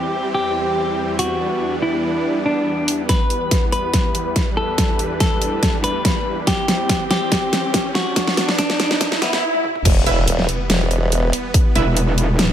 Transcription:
Already playing: supersaw synth E2 E3 G3 C4 G4, clean electric guitar G4
0.34 clean electric guitar G4
1.19 clean electric guitar F#4, open hi-hat
1.40 supersaw synth B3 D4
1.82 clean electric guitar E4
2.46 clean electric guitar D4
2.88 open hi-hat
3.09 supersaw synth E2 E3 B3 B4, clean electric guitar B4, kick, snare, closed hi-hat, riser
3.30 closed hi-hat
3.51 kick, snare, closed hi-hat
3.72 clean electric guitar B4, closed hi-hat
3.94 kick, snare, closed hi-hat
4.15 closed hi-hat
4.36 kick, snare, closed hi-hat
4.57 clean electric guitar A4
4.78 supersaw synth D4, kick, snare, closed hi-hat
4.99 closed hi-hat
5.20 clean electric guitar A4, kick, snare, closed hi-hat
5.42 closed hi-hat
5.63 kick, snare, closed hi-hat
5.84 clean electric guitar B4, closed hi-hat
6.05 kick, snare, closed hi-hat
6.47 clean electric guitar G4, kick, snare, closed hi-hat
6.68 snare, closed hi-hat
6.89 kick, snare, closed hi-hat
7.11 clean electric guitar G4, snare, closed hi-hat
7.32 kick, snare, closed hi-hat
7.53 snare, closed hi-hat
7.74 kick, snare, closed hi-hat
7.95 clean electric guitar F#4, snare
8.16 supersaw synth B3 D4, kick, snare, closed hi-hat
8.27 snare
8.37 snare, closed hi-hat
8.49 snare
8.58 clean electric guitar D4, kick, snare, closed hi-hat
8.70 snare
8.80 snare, closed hi-hat
8.91 snare
9.01 kick, snare, closed hi-hat, swell
9.12 snare
9.22 clean electric guitar B3, snare, closed hi-hat
9.33 snare
9.54 high tom
9.64 mid tom
9.75 mid tom
9.85 wobble bass E1, supersaw synth E3 G3 B3, kick, closed hi-hat, crash, impact
10.06 synth stab E4 B4 E5, closed hi-hat
10.28 wobble bass E1, closed hi-hat
10.39 snare
10.49 closed hi-hat
10.70 wobble bass E1, snare, closed hi-hat
10.91 closed hi-hat
11.12 closed hi-hat
11.33 open hi-hat
11.54 kick, closed hi-hat
11.75 wobble bass E1, synth stab E4 B4 E5, closed hi-hat
11.97 closed hi-hat
12.18 closed hi-hat
12.34 wobble bass D#1
12.39 snare, closed hi-hat

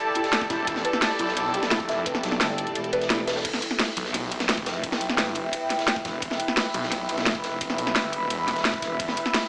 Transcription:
Already playing: ambient pad E4 G4 A4, string section A4 D5 A5
0.15 felt piano E4, closed hi-hat, ride
0.24 snare, closed hi-hat
0.33 snare, closed hi-hat, ride
0.41 kick, snare
0.50 detuned saw bass E1, felt piano E4, kick, snare, closed hi-hat, ride
0.67 detuned saw bass E1, felt piano E4, kick, closed hi-hat, ride
0.76 snare
0.85 felt piano B4, closed hi-hat, ride
0.93 snare, ride
1.02 snare, closed hi-hat, open hi-hat
1.11 ride
1.19 detuned saw bass B1, felt piano E4, closed hi-hat, ride
1.28 snare
1.37 closed hi-hat, ride
1.54 felt piano G4, closed hi-hat, ride
1.63 snare, closed hi-hat
1.71 detuned saw bass F1, felt piano E4, snare, closed hi-hat, ride
1.80 kick
1.88 felt piano E5, snare, closed hi-hat, ride
2.06 felt piano B4, kick, closed hi-hat, ride
2.15 snare
2.23 fm bass B1, snare, closed hi-hat, ride
2.32 snare
2.40 fm bass G1, snare, closed hi-hat, ride
2.58 closed hi-hat, ride
2.67 closed hi-hat
2.75 fm bass E1, closed hi-hat, ride
2.84 closed hi-hat
2.93 felt piano B4, closed hi-hat, ride
3.02 snare, closed hi-hat
3.10 felt piano E4, snare, closed hi-hat
3.19 snare
3.27 felt piano B4, snare, closed hi-hat, open hi-hat
3.36 snare, open hi-hat
3.45 detuned saw bass E1, ambient pad E4 B4 E5 G5, kick, closed hi-hat, ride, crash
3.54 snare
3.62 closed hi-hat, ride
3.71 snare, ride
3.79 snare, closed hi-hat, open hi-hat, ride
3.88 ride
3.97 detuned saw bass B1, closed hi-hat, ride
4.05 snare
4.14 snare, closed hi-hat, ride
4.32 closed hi-hat, ride
4.40 snare, closed hi-hat
4.49 detuned saw bass F1, snare, closed hi-hat, ride
4.58 kick
4.66 snare, closed hi-hat, ride
4.84 kick, closed hi-hat, ride
4.92 snare, ride
5.01 detuned saw bass B1, closed hi-hat, ride
5.10 snare, ride
5.18 detuned saw bass G1, snare, closed hi-hat, ride
5.35 closed hi-hat, ride
5.53 closed hi-hat, ride
5.70 snare, closed hi-hat, ride
5.79 snare, closed hi-hat
5.87 snare, closed hi-hat, ride
5.96 kick
6.05 detuned saw bass E1, kick, snare, closed hi-hat, ride
6.22 detuned saw bass E1, ambient pad B5, kick, closed hi-hat, ride
6.31 snare
6.40 closed hi-hat, ride
6.48 snare, ride
6.57 snare, closed hi-hat, open hi-hat, ride
6.65 ride
6.74 detuned saw bass B1, closed hi-hat, ride
6.83 snare
6.92 snare, closed hi-hat, ride
7.09 closed hi-hat, ride
7.18 snare, closed hi-hat
7.26 detuned saw bass F1, snare, closed hi-hat, ride
7.35 kick
7.44 snare, closed hi-hat, ride
7.61 kick, closed hi-hat, ride
7.70 snare
7.78 detuned saw bass B1, closed hi-hat, ride
7.87 snare
7.96 detuned saw bass G1, snare, closed hi-hat, ride
8.12 closed hi-hat, ride
8.30 detuned saw bass E1, closed hi-hat, ride
8.48 snare, closed hi-hat, ride
8.56 snare, closed hi-hat
8.65 snare, closed hi-hat, ride
8.74 kick
8.82 kick, snare, closed hi-hat, ride
9.00 detuned saw bass E1, ambient pad G5, kick, closed hi-hat, ride
9.08 snare
9.17 closed hi-hat, ride
9.26 snare, ride
9.34 snare, closed hi-hat, open hi-hat, ride
9.43 ride

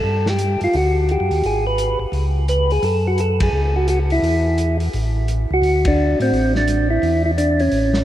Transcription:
Already playing: tonewheel organ A4
0.04 tonewheel organ G2
0.26 tonewheel organ G4, snare
0.39 closed hi-hat
0.61 tonewheel organ G2 F4, open hi-hat
0.73 tonewheel organ D2 F#4, open hi-hat
1.09 tonewheel organ G4, closed hi-hat
1.20 tonewheel organ F#2
1.31 tonewheel organ D#2, open hi-hat
1.43 tonewheel organ G#1 G#4, open hi-hat
1.67 tonewheel organ B4
1.78 closed hi-hat
1.99 tonewheel organ G#1
2.12 tonewheel organ C#2, open hi-hat
2.48 tonewheel organ B4, closed hi-hat
2.70 tonewheel organ G#4, open hi-hat
2.83 tonewheel organ F#2 A4, open hi-hat
3.08 tonewheel organ F#4
3.18 tonewheel organ A4, closed hi-hat
3.40 tonewheel organ G#4, kick, ride
3.53 tonewheel organ C#2
3.76 tonewheel organ F#4
3.88 tonewheel organ F#4, closed hi-hat
4.10 tonewheel organ E4, open hi-hat
4.22 tonewheel organ E2, open hi-hat
4.58 closed hi-hat
4.80 open hi-hat
4.93 tonewheel organ A1, open hi-hat
5.28 closed hi-hat
5.51 tonewheel organ C#2 F#4
5.62 tonewheel organ D2, open hi-hat
5.85 tonewheel organ D4, kick, ride
6.20 tonewheel organ A2 C4, open hi-hat
6.32 tonewheel organ A1, open hi-hat
6.55 tonewheel organ D4, snare
6.68 closed hi-hat
6.90 tonewheel organ E4
7.02 tonewheel organ E2, open hi-hat
7.26 tonewheel organ E4
7.38 tonewheel organ D4, closed hi-hat
7.59 tonewheel organ C#4, open hi-hat
7.72 tonewheel organ A1, open hi-hat
7.94 snare

